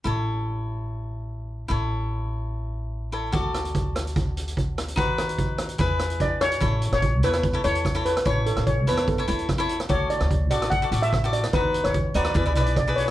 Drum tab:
HH |----------------|----------------|x-xxx-xxx-xxx-xx|x-xxx-xxx-xxx-xx|
SD |----------------|----------------|--r---r-------r-|--r---r---r---r-|
BD |----------------|----------------|o---o---o---o---|o---o---o---o---|

HH |x-xxx-xxx-xxx-xx|x-xxx-xxx-xxx-xx|x-xxx-xxx-xxx-xx|x-xxx-xxx-xxx-x-|
SD |---r---r----r--r|---r---r----r--r|---r---r----r--r|---r---r----r---|
BD |o---o---o---o---|o---o---o---o---|o---o---o---o---|o---o---o---o---|